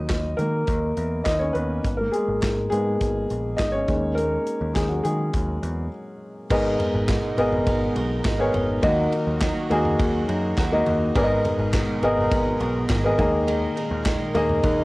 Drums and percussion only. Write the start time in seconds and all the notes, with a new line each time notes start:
0.09 kick, snare, clap, closed hi-hat
0.39 closed hi-hat
0.67 kick, closed hi-hat
0.97 closed hi-hat
1.26 kick, snare, clap, closed hi-hat
1.55 closed hi-hat
1.85 kick, closed hi-hat
2.14 closed hi-hat
2.43 kick, snare, clap, closed hi-hat
2.72 closed hi-hat
3.01 kick, closed hi-hat
3.30 closed hi-hat
3.59 kick, snare, clap, closed hi-hat
3.88 kick, closed hi-hat
4.18 closed hi-hat
4.47 closed hi-hat
4.76 kick, snare, clap, closed hi-hat
5.05 closed hi-hat
5.34 kick, closed hi-hat
5.63 closed hi-hat
6.50 kick, crash
6.80 floor tom, ride
7.09 kick, snare, clap, ride
7.38 ride
7.52 floor tom
7.67 kick, ride
7.96 ride
8.25 kick, snare, clap, ride
8.54 floor tom, ride
8.83 kick, ride
9.12 ride
9.41 kick, snare, clap, ride
9.71 ride
9.85 floor tom
10.00 kick, ride
10.29 ride
10.58 kick, snare, clap, ride
10.86 floor tom, ride
11.16 kick, ride
11.45 floor tom, ride
11.74 kick, snare, clap, ride
12.03 ride
12.17 floor tom
12.32 kick, ride
12.60 ride
12.89 kick, snare, clap, ride
13.19 kick, floor tom, ride
13.48 ride
13.77 ride
14.06 kick, snare, clap, ride
14.35 ride
14.49 floor tom
14.63 kick, ride